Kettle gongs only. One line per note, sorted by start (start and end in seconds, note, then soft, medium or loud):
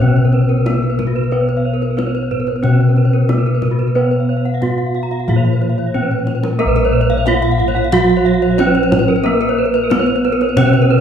0.00 1.94 B2 medium
0.00 0.62 A#4 medium
0.66 0.74 B3 soft
1.32 3.26 B4 medium
1.99 2.07 B3 soft
2.64 4.58 B2 medium
3.31 3.39 B3 soft
3.96 5.90 B4 medium
4.63 4.71 B3 soft
5.29 7.23 A#2 medium
5.95 6.03 B3 soft
6.61 8.55 A#4 medium
6.66 10.55 A#1 loud
7.26 7.34 B3 soft
8.59 8.67 B3 soft
9.24 11.01 A#4 medium
9.90 9.98 B3 medium
10.56 11.01 B2 medium